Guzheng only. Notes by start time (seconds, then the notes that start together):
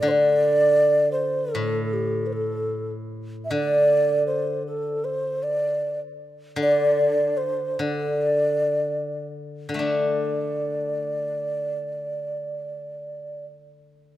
0.03 D3
1.55 A2
3.51 D3
6.56 D3
7.79 D3
9.69 D3
9.74 A3
9.79 D4